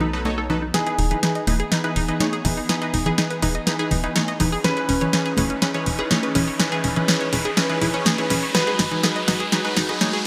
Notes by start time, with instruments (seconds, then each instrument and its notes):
Already playing: analog synth bass B1, supersaw synth F#3 D#4 A4 B4, string section A3 B3 D#4
0.00 synth arpeggio sound D#4, low conga
0.13 supersaw synth F#3 D#4 A4 B4, synth arpeggio sound D#5
0.25 supersaw synth F#3 D#4 A4 C#5, synth arpeggio sound D#4, high bongo, high conga
0.38 synth arpeggio sound A4
0.50 supersaw synth F#3 D#4 A4 B4, synth arpeggio sound D#4, low conga
0.62 synth arpeggio sound D#4
0.74 supersaw synth E3 D#4 G#4 B4, string section E3 B3 D#4 G#4, synth arpeggio sound D#4, grand piano G#4, synth pluck G#4, snare, closed hi-hat, riser
0.87 supersaw synth E3 D#4 G#4 B4, synth arpeggio sound G#4, closed hi-hat
0.99 analog synth bass E1, synth arpeggio sound D#4, open hi-hat
1.11 supersaw synth E3 D#4 G#4 B4, synth arpeggio sound D#4, closed hi-hat, low conga
1.23 supersaw synth E3 D#4 G#4 B4, synth arpeggio sound D#4, snare, closed hi-hat
1.35 synth arpeggio sound D#5, closed hi-hat
1.47 analog synth bass E1, supersaw synth E3 D#4 G#4 B4, synth arpeggio sound D#4, open hi-hat, high conga
1.60 synth arpeggio sound G#4, closed hi-hat
1.72 supersaw synth E3 D#4 G#4 B4, synth arpeggio sound D#4, snare, closed hi-hat
1.84 supersaw synth E3 D#4 G#4 B4, synth arpeggio sound B4, closed hi-hat
1.96 analog synth bass E1, synth arpeggio sound D#4, open hi-hat
2.08 supersaw synth E3 D#4 G#4 B4, synth arpeggio sound D#5, closed hi-hat
2.20 supersaw synth E3 D#4 G#4 C#5, synth arpeggio sound D#4, snare, closed hi-hat, high conga
2.33 synth arpeggio sound G#4, closed hi-hat
2.45 analog synth bass E1, supersaw synth E3 D#4 G#4 B4, synth arpeggio sound D#4, open hi-hat, low conga
2.57 synth arpeggio sound D#4
2.69 supersaw synth E3 D#4 G#4 B4, synth arpeggio sound D#4, snare, closed hi-hat
2.82 supersaw synth E3 D#4 G#4 B4, synth arpeggio sound D#5, closed hi-hat
2.94 analog synth bass E1, synth arpeggio sound D#4, open hi-hat
3.06 supersaw synth E3 D#4 G#4 B4, synth arpeggio sound G#4, closed hi-hat, low conga
3.18 supersaw synth E3 D#4 G#4 B4, synth arpeggio sound D#4, snare, closed hi-hat
3.30 synth arpeggio sound B4, closed hi-hat
3.42 analog synth bass E1, supersaw synth E3 D#4 G#4 B4, synth arpeggio sound D#4, open hi-hat
3.55 synth arpeggio sound D#5, closed hi-hat
3.67 supersaw synth E3 D#4 G#4 B4, synth arpeggio sound D#4, snare, closed hi-hat
3.79 supersaw synth E3 D#4 G#4 B4, synth arpeggio sound G#4, closed hi-hat
3.91 analog synth bass E1, synth arpeggio sound D#4, open hi-hat, low conga
4.04 supersaw synth E3 D#4 G#4 B4, synth arpeggio sound D#4, closed hi-hat
4.16 supersaw synth E3 D#4 G#4 C#5, synth arpeggio sound D#4, snare, closed hi-hat, high conga
4.28 synth arpeggio sound D#5, closed hi-hat
4.40 analog synth bass E1, supersaw synth E3 D#4 G#4 B4, synth arpeggio sound D#4, open hi-hat, low conga
4.52 synth arpeggio sound G#4
4.64 supersaw synth E3 C#4 G#4 B4, string section E3 C#4 B4, synth arpeggio sound C#4, grand piano B4, synth pluck B4, snare, closed hi-hat
4.77 supersaw synth E3 C#4 G#4 B4, synth arpeggio sound B4, closed hi-hat
4.89 analog synth bass E1, synth arpeggio sound C#4, open hi-hat
5.01 supersaw synth E3 C#4 G#4 B4, synth arpeggio sound C#5, closed hi-hat, low conga
5.13 supersaw synth E3 C#4 G#4 B4, synth arpeggio sound C#4, snare, closed hi-hat
5.26 synth arpeggio sound G#4, closed hi-hat
5.37 analog synth bass E1, supersaw synth E3 C#4 G#4 B4, synth arpeggio sound C#4, open hi-hat, high conga
5.50 synth arpeggio sound C#4, closed hi-hat
5.62 supersaw synth E3 C#4 G#4 B4, synth arpeggio sound C#4, snare, closed hi-hat
5.74 supersaw synth E3 C#4 G#4 B4, synth arpeggio sound C#5, closed hi-hat
5.86 analog synth bass E1, synth arpeggio sound C#4, open hi-hat
5.99 supersaw synth E3 C#4 G#4 B4, synth arpeggio sound G#4, closed hi-hat
6.11 supersaw synth E3 C#4 G#4 C#5, synth arpeggio sound C#4, snare, closed hi-hat, high conga
6.23 synth arpeggio sound B4, closed hi-hat
6.35 analog synth bass E1, supersaw synth E3 C#4 G#4 B4, synth arpeggio sound C#4, open hi-hat, low conga
6.48 synth arpeggio sound C#5
6.60 supersaw synth E3 C#4 G#4 B4, synth arpeggio sound C#4, snare, closed hi-hat
6.72 supersaw synth E3 C#4 G#4 B4, synth arpeggio sound G#4, closed hi-hat
6.84 analog synth bass E1, synth arpeggio sound C#4, open hi-hat
6.96 supersaw synth E3 C#4 G#4 B4, synth arpeggio sound C#4, closed hi-hat, low conga
7.08 supersaw synth E3 C#4 G#4 B4, synth arpeggio sound C#4, snare, closed hi-hat
7.21 synth arpeggio sound C#5, closed hi-hat
7.33 analog synth bass E1, supersaw synth E3 C#4 G#4 B4, synth arpeggio sound C#4, open hi-hat
7.45 synth arpeggio sound G#4, closed hi-hat
7.57 supersaw synth E3 C#4 G#4 B4, synth arpeggio sound C#4, snare, closed hi-hat
7.70 supersaw synth E3 C#4 G#4 B4, synth arpeggio sound B4, closed hi-hat
7.81 analog synth bass E1, supersaw synth E3 C#4 G#4 B4, synth arpeggio sound E4, open hi-hat, low conga
7.94 supersaw synth E3 C#4 G#4 C#5, synth arpeggio sound C#4, closed hi-hat
8.05 synth arpeggio sound G#4, snare, closed hi-hat, high conga
8.18 supersaw synth E3 C#4 G#4 B4, synth arpeggio sound C#5, closed hi-hat
8.30 analog synth bass E1, supersaw synth E3 C#4 G#4 B4, synth arpeggio sound C#4, open hi-hat, low conga
8.43 synth arpeggio sound C#5
8.55 supersaw synth F#3 D#4 G#4 B4, string section G#3 F#4, synth arpeggio sound D#4, grand piano B4, synth pluck B4, snare, closed hi-hat
8.67 supersaw synth F#3 D#4 G#4 B4, synth arpeggio sound G#4, closed hi-hat, high bongo
8.79 analog synth bass G#1, synth arpeggio sound D#4, snare, open hi-hat
8.91 supersaw synth F#3 D#4 G#4 B4, synth arpeggio sound D#4, closed hi-hat, low conga
9.03 supersaw synth F#3 D#4 G#4 B4, synth arpeggio sound D#4, snare, closed hi-hat, high bongo
9.16 synth arpeggio sound D#5, closed hi-hat
9.28 analog synth bass G#1, supersaw synth F#3 D#4 G#4 B4, synth arpeggio sound D#4, snare, open hi-hat
9.40 synth arpeggio sound G#4, closed hi-hat
9.52 supersaw synth F#3 D#4 G#4 B4, synth arpeggio sound D#4, snare, closed hi-hat, high bongo
9.65 supersaw synth F#3 D#4 G#4 B4, synth arpeggio sound B4, closed hi-hat
9.77 analog synth bass G#1, synth arpeggio sound D#4, snare, open hi-hat
9.89 supersaw synth F#3 D#4 G#4 B4, synth arpeggio sound D#5, closed hi-hat, high bongo
10.01 supersaw synth F#3 D#4 G#4 C#5, synth arpeggio sound D#4, snare, closed hi-hat, high conga
10.13 synth arpeggio sound G#4, closed hi-hat